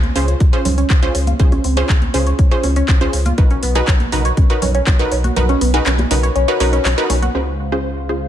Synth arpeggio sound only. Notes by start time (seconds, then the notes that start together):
0.16 C#3
0.28 C#5
0.40 C#4
0.53 C#5
0.65 C#4
0.78 C#4
0.90 C#4
1.15 C#4
1.27 F4
1.52 C#4
1.64 C4
1.77 G#4
1.89 C#4
2.14 C#3
2.27 C#5
2.39 C#4
2.52 C#5
2.64 C#4
2.76 C#4
2.88 C#4
3.13 C#4
3.26 F4
3.51 C#4
3.63 B3
3.75 G#4
3.87 C#4
4.12 C#3
4.25 C#5
4.37 C#4
4.50 C#5
4.62 C#4
4.75 C#4
4.87 C#4
5.12 C#4
5.24 F#4
5.49 C#4
5.61 B3
5.74 G#4
5.86 C#4
6.11 C#3
6.23 C#5
6.36 C#4
6.48 C#5
6.60 C#4
6.73 C#4
6.85 C#4
7.10 C#4
7.22 F#4